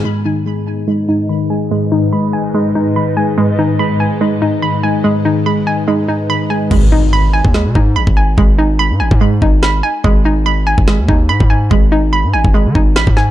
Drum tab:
CC |----------------|----------------|----------------|----------------|
SD |----------------|----------------|----------------|----------------|
BD |----------------|----------------|----------------|----------------|

CC |x---------------|----------------|----------------|----------------|
SD |--------o-------|------------o---|--------o-------|------------o-o-|
BD |o------o--o--o--|o------o--o-----|o------o--o--o--|o------o--o--o--|